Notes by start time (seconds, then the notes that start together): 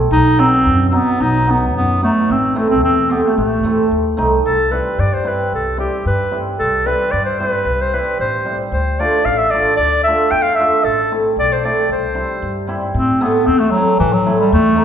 0.11 B1 D#4
0.38 F#3 B3 C4 D#4
0.66 F#2
0.87 C4
0.92 F#3 B3 D#4
1.20 B1 D#4
1.47 F#3 B3 D#4
1.76 F#2 B3
2.02 F#3 A3 B3 D#4
2.30 A1 C4
2.55 A3 C4 E4
2.70 C4
2.83 E2 C4
3.09 A3 B3 C4 G4
3.24 A3
3.37 A1 A3
3.64 E2 A3 C4 E4
3.91 D#2
4.17 C2 A3 C4 D#4
4.46 C2 A4
4.71 G3 C4 E4 B4
4.99 G2 D5
5.13 C5
5.24 G3 C4 E4 B4
5.53 C2 A4
5.77 G3 C4 E4 G4
6.06 G2 B4
6.31 G3 C4 E4
6.59 C2 A4
6.85 G3 C4 E4 B4
7.11 G2 D5
7.25 C5
7.39 G3 C4 E4 C5
7.50 B4
7.65 C2
7.81 C5
7.93 G3 C4 E4 B4
8.19 A1 C5
8.45 G3 C4 E4
8.72 D2 C5
8.99 A3 D4 F4 D5
9.25 A1 F5
9.37 E5
9.50 A3 D4 F4 D5
9.77 D2 D5
10.04 A3 D4 E5
10.08 F4
10.31 E2 G5
10.42 F5
10.55 D4 E5
10.59 A3 F4
10.84 A1 A4
11.11 A3 C4 E4
11.36 B1 D5
11.52 C5
11.64 A3 C4 E4 D5
11.89 C2 C5
12.14 G3 C4 E4
12.42 G2
12.67 G3 C4 E4
12.95 A2 C4
13.20 A3 B3 C4 E4
13.46 E2 C4
13.59 A3
13.71 F#3 A3
13.75 C4 E4
13.99 A2 E3
14.13 F#3
14.26 A3 C4 E4
14.40 G3
14.52 E2 A3
14.75 A3 C4 D#4